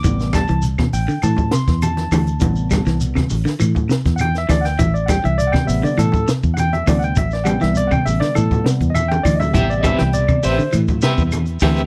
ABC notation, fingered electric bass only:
X:1
M:4/4
L:1/16
Q:1/4=101
K:Am
V:1 name="Fingered electric bass" clef=bass
A,,,3 C,,2 z A,,, z A,,2 z E,,3 D,,2 | A,,,3 C,,2 z A,,, z A,,2 z E,,3 D,,2 | A,,,3 C,,2 z A,,, z A,,2 z E,,3 D,,2 | A,,,3 C,,2 z A,,, z A,,2 z E,,3 D,,2 |
A,,,3 C,,2 z A,,, z A,,2 z E,,3 D,,2 |]